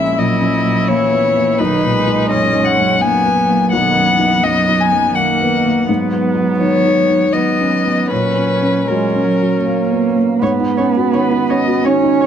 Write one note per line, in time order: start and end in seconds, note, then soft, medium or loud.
0.00 1.55 A#1 medium
0.00 0.19 G#3 soft
0.00 0.89 A#3 soft
0.00 0.31 C#4 soft
0.00 1.61 E4 medium
0.00 0.20 E5 medium
0.17 0.56 A#2 soft
0.17 0.53 F#3 medium
0.17 0.90 D#5 medium
0.41 0.79 C#4 soft
0.54 0.90 F#3 medium
0.64 1.02 A#2 soft
0.88 1.62 E3 medium
0.88 1.26 A#3 soft
0.88 1.60 C#5 medium
1.12 1.35 B3 soft
1.36 1.59 A#3 soft
1.58 3.69 B1 medium
1.58 1.94 D#3 medium
1.58 2.33 D#4 medium
1.58 2.30 B4 medium
1.83 2.21 A#2 soft
1.95 3.04 G#3 medium
2.07 2.45 D#4 soft
2.31 2.70 F#2 soft
2.31 3.02 C#4 medium
2.31 2.66 D#5 medium
2.54 2.92 D#4 soft
2.64 3.03 F#5 medium
2.79 3.16 F#2 soft
3.01 3.74 F#3 medium
3.01 3.40 A#3 soft
3.01 3.72 B3 medium
3.01 3.71 G#5 medium
3.26 3.49 B3 soft
3.49 3.87 A#3 soft
3.71 5.85 B1 medium
3.71 4.10 D#3 medium
3.71 5.18 B3 medium
3.71 4.45 F#5 medium
3.96 4.34 F#2 soft
4.09 4.43 E3 medium
4.19 4.58 D#4 medium
4.43 4.82 F#2 soft
4.43 5.14 F#3 medium
4.43 4.82 D#5 medium
4.68 5.07 D#4 soft
4.81 5.16 G#5 medium
4.92 5.31 F#2 soft
5.15 5.86 D#3 medium
5.15 5.88 A#3 medium
5.15 5.56 A#3 medium
5.15 5.88 F#5 medium
5.42 5.65 B3 soft
5.66 5.89 A#3 soft
5.89 8.07 G#2 medium
5.89 7.30 F#3 medium
5.89 7.30 B3 medium
6.12 6.50 B3 soft
6.35 6.74 D#4 medium
6.60 6.99 D#3 soft
6.60 7.35 C#5 medium
6.85 7.24 D#4 soft
7.08 7.49 D#3 soft
7.32 8.08 F#3 soft
7.32 7.75 B3 soft
7.32 8.11 B3 soft
7.32 8.10 D#5 medium
7.61 7.86 C#4 soft
7.85 8.11 B3 soft
8.10 10.38 A#2 soft
8.10 8.87 F#3 soft
8.10 8.88 C#4 soft
8.10 8.89 B4 medium
8.38 8.61 C#4 soft
8.63 9.04 C#4 soft
8.88 9.30 F#3 soft
8.88 9.26 G#3 medium
8.88 10.18 C#4 soft
8.88 10.03 A#4 soft
9.15 9.56 C#4 soft
9.25 9.61 F#3 soft
9.41 9.81 F#3 soft
9.62 10.40 A#3 medium
9.66 10.07 A#3 soft
9.91 10.17 B3 soft
10.16 10.41 A#3 soft
10.39 12.27 G#2 medium
10.39 11.86 B3 medium
10.39 10.50 C#5 medium
10.60 10.89 D#4 soft
10.77 11.08 C#4 soft
10.77 10.85 C#5 soft
10.97 11.26 F#4 soft
11.13 11.43 D#3 soft
11.13 11.52 B4 soft
11.13 11.21 C#5 soft
11.32 11.61 D#4 soft
11.50 11.79 C#4 soft
11.50 11.58 C#5 soft
11.50 11.88 D#5 medium
11.67 11.97 F#4 soft
11.84 12.15 D#3 soft
11.84 12.27 C#4 medium
11.84 11.92 C#5 soft
11.84 12.27 C#5 medium
12.03 12.27 D#4 soft
12.21 12.27 C#4 soft
12.21 12.27 C#5 soft